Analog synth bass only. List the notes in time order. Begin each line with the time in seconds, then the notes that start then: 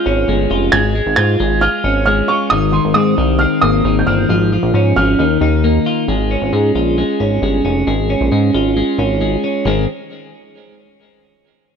0.06 G#1
0.28 G1
0.51 F1
0.73 G#1
1.06 G#1
1.18 G#2
1.40 G#1
1.84 G#1
2.51 G#1
2.85 G#1
2.96 G#2
3.18 C2
3.63 G#1
3.84 G#1
4.07 G1
4.29 G#1
4.63 A#1
4.74 G#2
4.96 G#1
5.19 D#2
5.41 D#2
6.08 G#1
6.42 G#1
6.53 G#2
6.75 A#1
7.20 G#1
7.42 G1
7.65 F1
7.87 G#1
8.21 A#1
8.32 G#2
8.54 G#1
8.98 G#1
9.65 G#1